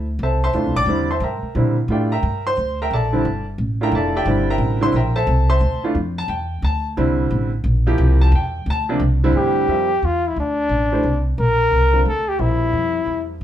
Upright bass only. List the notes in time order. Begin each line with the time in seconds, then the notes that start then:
Already playing: D2
0.19 C2
0.54 D2
0.64 C2
0.76 A1
0.86 E2
1.20 G2
1.42 muted upright bass stroke
1.55 A#2
1.88 A2
2.23 G2
2.57 D2
2.90 A#1
3.25 G1
3.58 A1
3.92 F1
4.25 G1
4.58 A1
4.92 A#1
5.27 C2
5.60 D2
5.95 F2
6.28 E2
6.62 D2
6.97 C2
7.31 A1
7.64 A#1
7.98 C2
8.32 E2
8.66 D2
9.00 C2
9.33 G2
9.68 F2
10.03 E2
10.36 D2
10.69 A1
11.03 C2
11.38 A#1
11.71 C2
12.05 D2
12.39 A#1
12.73 F2
13.06 E2